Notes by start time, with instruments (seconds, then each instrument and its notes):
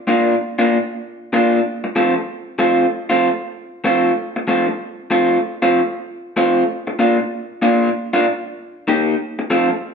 0.07 clean electric guitar A#2 A#3 D4 F4
0.59 clean electric guitar A#2 A#3 D4 F4
1.33 clean electric guitar A#2 A#3 D4 F4
1.84 muted clean electric guitar stroke
1.96 clean electric guitar F3 A3 C4 F4
2.16 muted clean electric guitar stroke
2.59 clean electric guitar F3 A3 C4 F4
3.10 clean electric guitar F3 A3 C4 F4
3.84 clean electric guitar F3 A3 C4 F4
4.36 muted clean electric guitar stroke
4.47 clean electric guitar F3 A3 C4 F4
4.68 muted clean electric guitar stroke
5.10 clean electric guitar F3 A3 C4 F4
5.62 clean electric guitar F3 A3 C4 F4
6.37 clean electric guitar F3 A3 C4 F4
6.87 muted clean electric guitar stroke
6.99 clean electric guitar A#2 A#3 D4 F4
7.19 muted clean electric guitar stroke
7.62 clean electric guitar A#2 A#3 D4 F4
8.13 clean electric guitar A#2 A#3 D4 F4
8.88 clean electric guitar D#3 A#3 D#4 G4
9.39 muted clean electric guitar stroke
9.50 clean electric guitar F3 A3 C4 F4
9.71 muted clean electric guitar stroke